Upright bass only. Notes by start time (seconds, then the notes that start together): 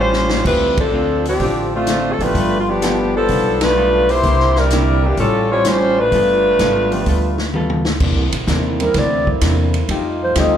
Already playing: A1
0.45 D2
1.40 A1
2.19 A1
2.35 G1
3.29 B1
4.24 C2
5.17 A1
6.12 G1
6.59 G#1
7.06 D2
8.00 E2
8.16 C2
8.32 A#1
8.47 D#2
8.94 D2
9.42 E2
9.89 F2
10.36 D2